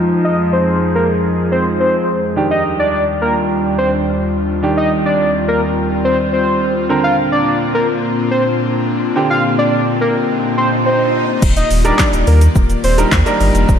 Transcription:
Already playing: F2 F3 G#3 D#4 F4 G#4
0.24 D#5
0.53 C5
0.95 A#4
1.52 C5
1.80 C5
2.36 D#2 D#3 G3 D4 F4 G4
2.51 D#5
2.79 D5
3.22 A#4
3.78 C5
4.63 D#3 C4 D4 G4
4.77 D#5
5.06 D5
5.48 A#4
6.05 C5
6.33 C5
6.89 A#2 D3 A#3 C4 D4 A#4, swell
7.04 F5
7.32 D5
7.74 A#4
8.31 C5
9.15 D3 C4 G4
9.30 F5
9.58 D5
10.01 A#4
10.57 C5
10.86 C5
11.42 D#1 D#3 A#3 F4 G4 D5, kick, crash, shaker
11.57 D#5, closed hi-hat, shaker
11.71 D#1, open hi-hat, shaker
11.85 G3 D4 D#4 A#4 D5, closed hi-hat, shaker
11.99 kick, snare, clap, shaker
12.13 D#1, closed hi-hat, shaker
12.27 D#2 A#4, open hi-hat, shaker
12.41 closed hi-hat, shaker
12.55 D#1, kick, shaker
12.70 closed hi-hat, shaker
12.84 D#1 C5, open hi-hat, shaker
12.98 G3 D4 D#4 A#4, closed hi-hat, shaker
13.12 D#2, kick, snare, clap, shaker
13.26 G3 D4 D#4 A#4, closed hi-hat, shaker
13.40 G1, open hi-hat, shaker
13.55 F1, closed hi-hat, shaker
13.69 D#1, kick, shaker

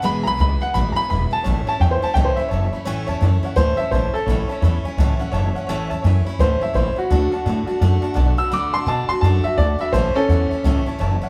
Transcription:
0.02 E1 E2 B2 E3 G#3 B3 E4 B4 E5 G#5 B5
0.23 B1 G#3 B3 E4 B4 E5 G#5 A#5
0.27 E3 B5
0.37 C#2 E3 G#3 B3 E4 B4 E5 G#5 B5
0.60 E3 G#3 B3 E4 B4 E5 F#5 G#5, muted upright bass stroke
0.74 A1 E2 B2 E3 G#3 B3 E4 B4 E5 B5
0.92 E4 B4 A#5
0.96 E3 G#3 B3 E5 G#5 B5, muted upright bass stroke
1.09 E1 E3 G#3 B3 B4 E5 B5
1.13 E4
1.30 E3 G#3 B3 E4 B4 E5 G#5 A5, muted upright bass stroke
1.43 A1 A2 E3 A3 C#4 E4 C#5 E5 A5
1.66 A3 C#4 E4 C#5 E5 A5, muted upright bass stroke
1.79 E2 E3 A3 C#4 C#5 E5 G5 A5
1.84 E4
1.91 C5
2.00 C#4 E4 C#5 E5 A5, muted upright bass stroke
2.05 A3
2.14 C#2 A2 E3 A3 C#4 E4 C#5 E5 G5 A5
2.25 C5
2.36 A3 C#4 E4 C#5 E5 B5, muted upright bass stroke
2.48 F#1 E3 C#5 E5 A5
2.53 A3 C#4 E4
2.71 C#4 E4 C#5 E5 B5, muted upright bass stroke
2.76 A3
2.85 A1 A2 E3 A3 C#4 E4 C#5 E5 G#5
3.07 E2 A3 C#4 E4 C#5 E5 A5
3.20 F#2 E3 A3 C#4 E4 C#5 E5 A5
3.43 A3 C#4 E4 C#5 E5 F#5, muted upright bass stroke
3.56 D2 A2 E3 A3 C#4 E4 C5 C#5 E5 A5
3.77 A3 C#4 E4 C#5 E5 A5
3.91 A1 E3 A3 C#4 E4 C5 C#5 E5 A5
4.13 C#4 E4 A4 C#5 E5 A5, muted upright bass stroke
4.18 A3
4.26 A1 A2 E3 A3 C#5 E5 B5
4.30 C#4 E4
4.47 C#4 E4 C#5 E5 A5, muted upright bass stroke
4.52 A3
4.61 E2 E3 A3 C#4 C#5 E5 B5
4.65 E4
4.84 C#4 E4 C#5 E5 G#5, muted upright bass stroke
4.88 A3
4.97 C#2 A2 E3 A3 C#4 C#5 E5 A5
5.01 E4
5.19 A3 C#4 E4 C#5 E5 F#5, muted upright bass stroke
5.32 F#1 E3 A3 C#4 E4 C#5 E5 A5
5.54 C#4 E4 C#5 E5 F#5, muted upright bass stroke
5.58 A3
5.67 A1 A2 E3 A3 C#4 E4 C#5 E5 A5
5.87 E2 E4 C#5 E5 A5
5.93 A3 C#4
6.02 F#2 E3 A3 C#5 E5 G#5
6.06 C#4 E4
6.25 C#4 E4 C#5 E5 B5
6.30 A3
6.39 D2 A2 E3 A3 C#4 E4 C5 C#5 E5 A5
6.60 C#4 E4 C#5 E5 A5
6.64 A3
6.73 A1 E3 A3 C#4 E4 C5 C#5 E5 B5
6.95 C#4 E4 F#4 C#5 E5 B5, muted upright bass stroke
7.00 A3
7.10 D2 D3 A3 D4 F#4 D5 F#5 A5
7.31 A3 D4 F#4 D5 F#5 A5, muted upright bass stroke
7.44 A2 D3 A3 D4 D5 F#5 A5
7.49 F#4
7.65 F#4 D5 F#5 A5, muted upright bass stroke
7.69 A3 D4
7.79 F#2 D3 A3 D4 D5 F#5 A5
7.83 F#4
8.01 A3 D4 F#4 D5 F#5 A5, muted upright bass stroke
8.14 B1 D3 A3 D4 F#4 D5 F#5 A5
8.37 D4 F#4 D5 F#5 B5 E6
8.41 A3
8.49 D2 D3 A3 D4 D5 F#5 B5
8.54 F#4 D6
8.72 A2 D4 F#4 D5 F#5 A5 C6
8.76 A3
8.85 B2 D3 A3 D4 D5 F#5 A5
8.89 F#4
9.07 F#4 D5 F#5 A5 C6, muted upright bass stroke
9.11 A3 D4
9.21 F#2 D3 A3 D5 F#5 A5
9.25 D4 F#4
9.43 D4 F#4 D5 E5 F#5 A5, muted upright bass stroke
9.48 A3
9.56 D2 D3 A3 D5 F#5 A5
9.60 D4 F#4
9.79 A3 D4 F#4 D5 E5 F#5 B5
9.92 A1 A2 E3 A3 C#4 C5 C#5 E5 A5
9.96 E4
10.14 C#4 E4 A4 C#5 E5 G#5, muted upright bass stroke
10.19 A3
10.27 E2 E3 A3 C#5 E5 F#5
10.32 C#4 E4
10.49 C#4 E4 C#5 E5 A5, muted upright bass stroke
10.54 A3
10.63 C#2 A2 E3 A3 C#4 C#5 E5 A5
10.67 E4
10.86 A3 C#4 E4 C#5 E5 A5, muted upright bass stroke
10.98 F#1 E3 A3 C#4 E4 C#5 E5 A5
11.21 A3 C#4 E4 C#5 E5 F#5, muted upright bass stroke

